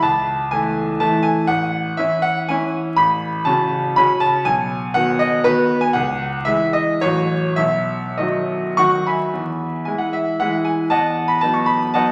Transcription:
0.02 C#2 A5
0.51 E3 A3 E4 G#5
1.00 E3 A3 E4 A5
1.23 G#5
1.47 A1 F#5
1.97 E3 C#4 E4 E5
2.22 F#5
2.49 E3 C#4 E4 G#5
2.96 A1 B5
3.45 C#3 C#4 F#4 A5
3.96 C#3 C#4 F#4 B5
4.20 A5
4.45 B1 G#5
4.94 D#3 B3 F#4 F#5
5.19 D#5
5.44 D#3 B3 F#4 B4
5.81 G#5
5.93 C#2 F#5
6.45 E3 G#3 E4 E5
6.73 D#5
7.01 A1 E3 F#3 F#4 C#5
7.56 B1 E5
8.17 D#3 F#3 F#4 D#5
8.77 D#3 F#3 F#4 F#5 C#6
9.07 E5 G#5 B5
9.33 E2
9.85 E3 G#3 E4 G#5
9.98 F#5
10.13 E5
10.40 E3 G#3 E4 F#5
10.65 G#5
10.90 E2 D#5 F#5 A5
11.28 B5
11.41 F#3 B3 D#4 A5
11.54 C#6
11.66 B5
11.94 F#3 B3 D#4 D#5 F#5 A5

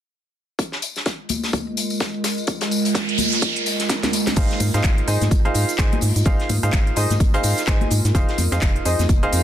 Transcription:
0.59 G#3, kick, closed hi-hat, tambourine
0.72 snare
0.77 F4
0.82 closed hi-hat, tambourine
0.96 snare, closed hi-hat, tambourine
1.03 A#4, kick, snare, closed hi-hat, tambourine
1.20 D#5, closed hi-hat
1.29 closed hi-hat, tambourine, high conga
1.43 snare, closed hi-hat, tambourine
1.53 kick, closed hi-hat, tambourine, high conga
1.67 closed hi-hat
1.77 closed hi-hat, tambourine
1.90 closed hi-hat, tambourine
2.00 kick, snare, closed hi-hat, tambourine
2.14 closed hi-hat
2.24 snare, closed hi-hat, tambourine
2.38 closed hi-hat, tambourine
2.47 kick, closed hi-hat, tambourine, noise sweep
2.61 snare, closed hi-hat
2.71 closed hi-hat, tambourine
2.85 closed hi-hat, tambourine
2.95 kick, snare, closed hi-hat, tambourine
3.09 closed hi-hat
3.18 closed hi-hat, tambourine, high conga
3.32 snare, closed hi-hat, tambourine
3.42 kick, closed hi-hat, tambourine
3.56 closed hi-hat
3.66 closed hi-hat, tambourine
3.79 snare, closed hi-hat, tambourine
3.89 kick, snare, closed hi-hat
4.03 snare, closed hi-hat, high conga
4.13 closed hi-hat, tambourine
4.27 snare, closed hi-hat, tambourine, high conga
4.36 G#1 D#4 G#4 C5 F5, kick, closed hi-hat, tambourine, crash, shaker
4.51 snare, closed hi-hat
4.60 G#2, closed hi-hat, open hi-hat, tambourine, high conga, shaker
4.74 G#2 D#4 G#4 C5 F5, snare, closed hi-hat, tambourine, shaker
4.83 G#1, kick, snare, clap, closed hi-hat, tambourine, shaker
4.98 closed hi-hat
5.08 G#2 D#4 G#4 C5 D#5, closed hi-hat, open hi-hat, tambourine, shaker
5.21 G#2, snare, closed hi-hat, tambourine, high conga, shaker
5.31 G#1, kick, closed hi-hat, tambourine, shaker
5.45 D#4 G#4 C5 F5, closed hi-hat
5.54 G#2, closed hi-hat, open hi-hat, tambourine, shaker
5.69 closed hi-hat, tambourine, shaker
5.78 G#1 D#4 G#4 C5 G#5, kick, snare, clap, closed hi-hat, shaker
5.92 closed hi-hat, high conga
6.01 G#2, open hi-hat, tambourine, shaker
6.16 G#2, closed hi-hat, tambourine, shaker
6.26 G#1 D#4 G#4 C5 F5, kick, closed hi-hat, tambourine, shaker
6.40 snare, closed hi-hat
6.49 G#2, closed hi-hat, open hi-hat, tambourine, high conga, shaker
6.63 G#2 D#4 G#4 C5 F5, closed hi-hat, tambourine, shaker
6.72 G#1, kick, snare, clap, closed hi-hat, tambourine, shaker
6.87 closed hi-hat
6.96 G#2 D#4 G#4 C5 D#5, closed hi-hat, open hi-hat, tambourine, shaker
7.10 G#2, snare, closed hi-hat, tambourine, high conga, shaker
7.20 G#1, kick, closed hi-hat, tambourine, shaker
7.34 D#4 G#4 C5 F5, closed hi-hat
7.43 G#2, closed hi-hat, open hi-hat, tambourine, shaker
7.57 snare, closed hi-hat, tambourine, shaker
7.67 G#1 D#4 G#4 C5 G#5, kick, snare, clap, closed hi-hat, shaker
7.81 closed hi-hat, high conga
7.91 G#2, closed hi-hat, open hi-hat, tambourine, shaker
8.04 G#2, snare, closed hi-hat, tambourine, shaker
8.15 F1 D#4 G#4 C5 F5, kick, closed hi-hat, tambourine, shaker
8.29 snare, closed hi-hat
8.38 F2, closed hi-hat, open hi-hat, tambourine, high conga, shaker
8.51 F2 D#4 G#4 C5 F5, snare, closed hi-hat, tambourine, shaker
8.61 F1, kick, snare, clap, closed hi-hat, tambourine, shaker
8.76 closed hi-hat
8.85 F2 D#4 G#4 C5 D#5, closed hi-hat, open hi-hat, tambourine, shaker
8.99 F2, snare, closed hi-hat, tambourine, high conga, shaker
9.09 F1, kick, closed hi-hat, tambourine, shaker
9.23 D#4 G#4 C5 F5, closed hi-hat
9.32 F2, closed hi-hat, open hi-hat, tambourine, shaker

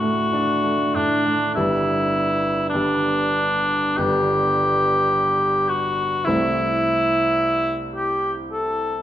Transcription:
Already playing: A2 A3 F#4
0.02 A3
0.33 D4
0.64 A3
0.95 A2 D4
1.26 A3
1.55 G1 G3 B3 D4 E4
2.70 D4
2.74 G1 G3 B3 D4
3.98 G1 G3 B3 D4 G4
5.69 F#4
6.25 C2 A3 C4 E4
7.96 G4
8.52 A4

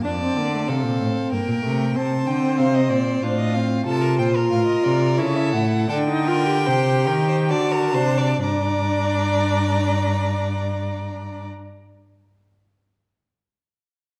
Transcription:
0.04 F2 D4 D5 A5
0.21 C4
0.37 D3 A#3
0.53 A3
0.68 C3 C4 A4 F5
0.84 A#2
1.00 A2
1.32 G2 A#3 A#4 G5
1.48 A#2
1.64 C3 A3
1.96 C3 C4 C5 A5
2.27 D3 G5
2.58 C3 F5
2.75 D#5
2.90 A#2 D5
3.22 A2 D4 F4 C5
3.38 D#5
3.54 C4 F5
3.86 C3 F4 A4 A5
4.01 A#4
4.19 A#2 C5 G5
4.35 A#4
4.50 A2 F5
4.66 D#5
4.84 C3 D5
5.18 C#3 E4 A4 C#5
5.36 E5
5.54 A2 F#5
5.89 D3 D4 A4 G5
6.09 D#4
6.27 F4 A#4
6.47 G4
6.66 C3 C5
7.07 D#3 A#4
7.28 C5
7.50 D3 F#4 D5 A5
7.72 A#4
7.94 C3 D4 C5
8.18 D5
8.41 G2 D4 D5 A#5

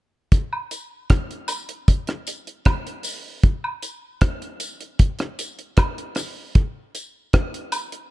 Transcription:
0.32 kick, closed hi-hat
0.53 high woodblock
0.71 closed hi-hat, tambourine
1.10 kick, cross-stick, closed hi-hat
1.31 closed hi-hat
1.48 closed hi-hat, tambourine, high woodblock
1.69 closed hi-hat
1.88 kick, closed hi-hat
2.07 cross-stick, closed hi-hat
2.27 closed hi-hat, tambourine
2.47 closed hi-hat
2.65 kick, cross-stick, closed hi-hat, high woodblock
2.87 closed hi-hat
3.03 open hi-hat, tambourine
3.43 kick, closed hi-hat
3.64 high woodblock
3.82 closed hi-hat, tambourine
4.21 kick, cross-stick, closed hi-hat
4.42 closed hi-hat
4.60 closed hi-hat, tambourine
4.81 closed hi-hat
4.99 kick, closed hi-hat
5.19 cross-stick, closed hi-hat
5.39 closed hi-hat, tambourine
5.59 closed hi-hat
5.77 kick, cross-stick, closed hi-hat, high woodblock
5.98 closed hi-hat
6.15 cross-stick, open hi-hat, tambourine
6.55 kick, closed hi-hat
6.95 closed hi-hat, tambourine
7.33 kick, cross-stick, closed hi-hat
7.54 closed hi-hat
7.72 closed hi-hat, tambourine, high woodblock
7.92 closed hi-hat

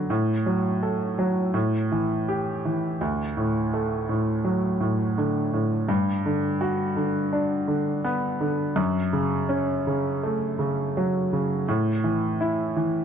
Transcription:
Already playing: D3 F#3 B3
0.10 A2
0.46 F#3
0.83 A4
1.19 F#3
1.54 A2
1.92 E3
2.28 G4
2.65 E3
3.01 D2
3.37 A2
3.74 A3
4.09 A2
4.44 F#3
4.80 A2
5.18 D3
5.53 A2
5.89 G2
6.26 D3
6.61 F#4
6.96 D3
7.33 D4
7.68 D3
8.04 B3
8.41 D3
8.76 F#2
9.13 C#3
9.49 C#4
9.87 C#3
10.23 A3
10.59 C#3
10.97 F#3
11.33 C#3
11.68 A2
12.04 E3
12.41 E4
12.77 E3

